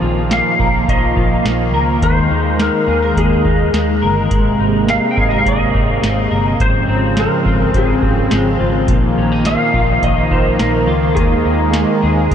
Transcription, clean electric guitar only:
Already playing: A#2
0.02 F4
0.29 A#3
0.59 A#4
0.88 D#3
1.17 F4
1.45 A#3
1.74 A#4
2.02 D#3
2.31 D#4
2.59 G#3
2.87 G#4
3.02 A#4
3.17 G#3
3.45 D#4
3.74 G#3
4.02 A#4
4.31 G#3
4.60 D#4
4.88 C4
5.16 G#4
5.30 A#4
5.45 C4
5.74 D#4
6.03 C4
6.31 A#4
6.60 G#2
6.88 C4
7.17 G#3
7.46 F4
7.74 F3
8.02 C4
8.31 G#3
8.60 F4
8.89 A#2
9.18 C#4
9.32 D#4
9.45 A#3
9.74 F4
10.02 D#3
10.31 D#4
10.59 A#3
10.87 F4
11.16 D#3
11.45 D#4
11.74 A#3
12.03 G#4
12.31 A#3

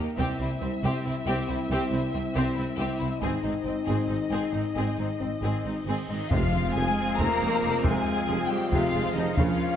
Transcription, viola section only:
0.18 C4
0.39 C4
0.61 C4
0.84 C4
1.06 C4
1.27 C4
1.50 C4
1.71 C4
1.92 C4
2.14 C4
2.36 C4
2.57 C4
2.79 C4
3.01 C4
3.22 C4
3.45 C4
3.67 C4
3.89 C4
4.09 C4
4.32 C4
4.54 C4
4.77 C4
4.99 C4
5.20 C4
5.43 C4
5.66 C4
5.89 C4
6.10 C4
6.31 C3 C4
6.76 F3
7.19 C3
7.42 G#3
7.63 F3
7.84 C3
8.28 F3
8.72 C3
8.94 G#3
9.18 F3
9.38 C#3 C#4

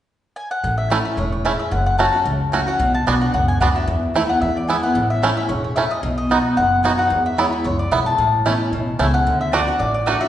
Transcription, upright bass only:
0.64 A1
1.17 E1
1.72 F#1
2.26 C#2
2.80 B1
3.07 B1
3.34 C#2
3.60 D2
3.88 E2
4.41 E2
4.96 A1
5.49 E1
6.03 B1
6.57 F#1
7.11 E2
7.65 C#2
7.92 B1
8.18 A1
8.72 B1
8.99 C#2
9.26 D2
9.79 A1

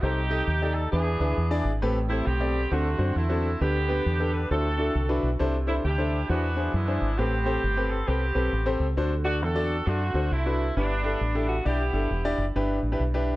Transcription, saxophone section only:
0.02 D#4 G4
0.74 A4
0.92 B3 D4 G#4
2.09 E4
2.26 B3 C4 G4
2.72 A3 C4 F#4
3.16 A3 C4 E4
3.62 B3 D4 G4
4.34 B4
4.52 C4 F#4 A4
5.67 E4
5.85 D4 E4 G4
6.30 B3 D4 F#4
6.74 G#3 B3 E4
7.18 B3 C4 G4
7.90 A4
8.08 B3 C4 G4
9.25 F#4
9.42 C4 F#4 A4
9.87 A3 C4 F#4
10.32 A3 C4 E4
10.77 B3 D4
11.49 F#4
11.66 B3 E4 G4

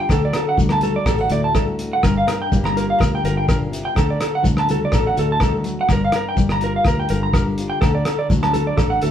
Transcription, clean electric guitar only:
0.00 G5
0.12 A4
0.25 D5
0.36 A4
0.49 F#5
0.72 A5
0.83 A4
0.96 D5
1.08 A4
1.21 F#5
1.32 D5
1.44 A5
1.55 A4
1.93 F#5
2.04 A#4
2.17 F5
2.27 A#4
2.42 G5
2.66 A#5
2.77 A#4
2.90 F5
3.00 A#4
3.15 G5
3.25 A#4
3.37 G5
3.49 A#4
3.85 G5
3.98 A4
4.10 D5
4.22 A4
4.35 F#5
4.59 A5
4.71 A4
4.85 D5
4.95 A4
5.07 F#5
5.19 A4
5.32 A5
5.44 A4
5.81 F#5
5.93 A#4
6.05 F5
6.16 A#4
6.29 G5
6.52 A#5
6.64 A#4
6.76 F5
6.88 A#4
7.00 G5
7.10 A#4
7.23 A#5
7.34 A#4
7.70 G5
7.81 A4
7.95 D5
8.07 A4
8.19 D5
8.43 A5
8.53 A4
8.67 D5
8.77 A4
8.90 F#5
9.03 A4

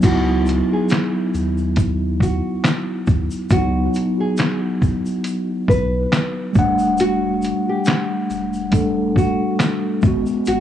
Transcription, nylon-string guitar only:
0.04 F#4
0.73 G#4
2.22 F#4
3.52 F#4
4.20 G#4
5.69 B4
7.00 F#4
7.69 G4
9.18 F#4
10.48 F#4

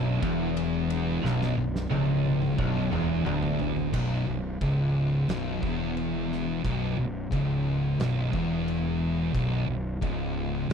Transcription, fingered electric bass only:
Already playing: B0
0.22 E1
1.23 B0
1.57 B0
1.91 C#1
2.58 B0
2.92 E1
3.25 D1
3.94 B0
4.26 B0
4.61 C#1
5.28 B0
5.62 E1
6.64 B0
6.96 B0
7.32 C#1
7.98 B0
8.33 E1
9.34 B0
9.67 B0
10.02 C#1
10.69 B0

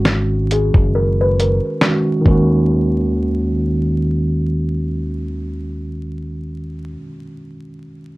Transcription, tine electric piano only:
Already playing: D#3 G#3 C#4 F#4
1.81 D#3 G#3 C#4 F#4
2.21 D#3 G#3
2.27 C#4 F#4

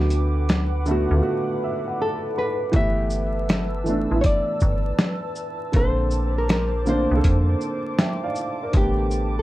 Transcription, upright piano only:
Already playing: D3 A3 B3 F#4
0.86 D3 A3 B3
0.91 F#4
1.11 D3 A3 B3
1.16 F4
1.23 F#4
1.64 E5
1.88 F#5
2.02 A5
2.38 B5
2.72 E3 A3 B3
2.77 G4
3.84 E3 A3 B3
3.89 D4
4.11 E3 A3 B3
4.16 E4
5.72 D3 A#3 C4
5.77 A4
6.85 D3 A#3 C4
6.90 D4
7.12 D3 A#3 C4
7.17 A4
7.99 E5 G5
8.24 D5 F5
8.63 A#4 D5
8.73 D3 A3 B3
8.78 G4

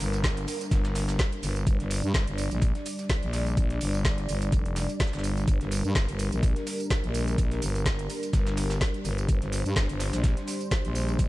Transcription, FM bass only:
0.00 G1
0.71 G1
1.43 G1
1.67 G1
1.80 G1
2.04 G2
2.14 G1
2.27 G1
2.51 A#1
3.23 A#1
3.57 A#1
3.81 G1
4.29 G1
4.52 F1
5.13 G1
5.48 G1
5.61 G1
5.85 G2
5.95 G1
6.09 G1
6.32 A#1
7.04 A#1
7.38 A#1
7.62 G1
8.33 G1
9.05 G1
9.29 G1
9.42 G1
9.66 G2
9.76 G1
9.89 G1
10.13 A#1
10.85 A#1
11.19 A#1

